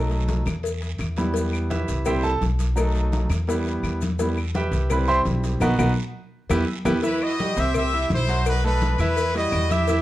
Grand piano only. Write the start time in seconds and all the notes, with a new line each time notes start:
Already playing: F#3 A3 D#4
1.17 G3 B3 E4
1.70 E4 G4 B4 E5
2.06 G3 C4 E4 G4 C5 E5 G5
2.23 A4 A5
2.76 F#3 A3 D#4
3.48 G3 B3 E4
4.19 G3 B3 E4
4.55 G4 B4 E5 G5
4.91 G3 C4 E4 B4 B5
5.08 C5 E5 G5 C6
5.62 B3 D#4 F#4
5.79 B3 D#4 F#4
6.50 B3 E4 G4
6.85 B3 E4 G4
7.03 E3 E4 E5
7.39 G3 G4 G5
7.57 C4 C5 C6
7.93 E4 E5 E6
8.29 F#3 F#4 F#5
8.64 A3 A4 A5
9.00 E3 E4 E5
9.35 G3 E4
9.70 E4 E5 E6
9.89 E3 E4 E5